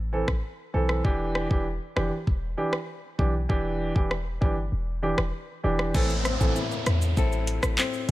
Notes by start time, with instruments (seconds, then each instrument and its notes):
Already playing: 808-style bass A1
0.13 grand piano E3 C4 A4
0.28 808-style bass A1, kick, cross-stick
0.74 808-style bass B1, grand piano E3 C4 A4
0.89 cross-stick
1.04 808-style bass E1, grand piano E3 D4 G4, kick
1.35 cross-stick
1.50 808-style bass E1, grand piano E3 D4 G4, kick
1.96 808-style bass F1, grand piano E3 D4 G4, cross-stick
2.27 808-style bass E1, kick
2.57 grand piano E3 D4 G4
2.73 cross-stick
3.18 808-style bass B1, grand piano E3 D4 G4, kick
3.49 808-style bass E1, grand piano E3 D4 G4, kick
3.95 808-style bass E1, grand piano E3 D4 G4, kick
4.11 cross-stick
4.41 808-style bass G1, grand piano E3 D4 G4, kick
4.72 808-style bass E1
5.02 grand piano E3 D4 G4
5.18 808-style bass E1, cross-stick
5.63 808-style bass E1, grand piano E3 D4 G4
5.79 cross-stick
5.94 808-style bass A1, nylon-string guitar A2, grand piano E3 C4 A4, kick, crash, downlifter, shaker
6.10 shaker
6.25 nylon-string guitar C4, cross-stick, closed hi-hat, shaker
6.40 808-style bass A1, grand piano E3 C4 A4, kick, shaker
6.56 nylon-string guitar E4, shaker
6.71 shaker
6.86 808-style bass E2, cross-stick, closed hi-hat, shaker
7.02 shaker
7.17 808-style bass A1, nylon-string guitar C4 E4 A4, kick, shaker
7.32 shaker
7.47 closed hi-hat, shaker
7.63 808-style bass A1, cross-stick, shaker
7.78 nylon-string guitar C4, clap, shaker
7.94 shaker